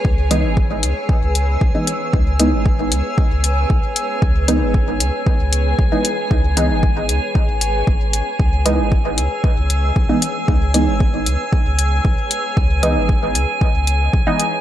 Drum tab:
HH |-x-x-x-x|-x-x-x-x|-x-x-x-x|-x-x-x-x|
BD |o-o-o-o-|o-o-o-o-|o-o-o-o-|o-o-o-o-|

HH |-x-x-x-x|-x-x-x-x|-x-x-x-x|
BD |o-o-o-o-|o-o-o-o-|o-o-o-o-|